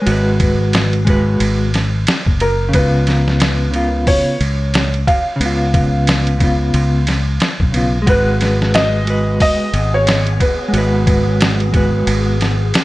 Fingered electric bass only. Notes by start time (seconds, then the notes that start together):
0.07 G#1
1.40 G#1
2.26 F#1
2.74 C#2
4.41 C#2
5.41 C#2
6.74 C#2
7.60 B1
8.07 G#1
9.73 G#1
10.73 G#1
12.07 G#1